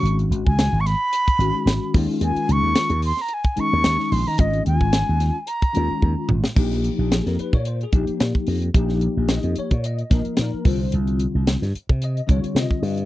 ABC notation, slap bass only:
X:1
M:4/4
L:1/16
Q:"Swing 16ths" 1/4=110
K:Bbdor
V:1 name="Slap bass" clef=bass
A,,,2 A,,, D,,2 A,,,2 z3 A,,, z A,,, z E,, z | E,, z D,, E,, z E,,2 z4 E,, E,, z B,,, E, | A,,,2 E,, A,,,2 E,,2 z3 E,, z E,, z A,,, z | B,,,3 B,,,2 F,, z B,,3 B,,, z B,, z F,,2 |
B,,,3 B,,,2 F,, z B,,3 B,,, z B,, z C,,2 | C,,3 C,,2 G,, z C,3 C,, z C, z G,,2 |]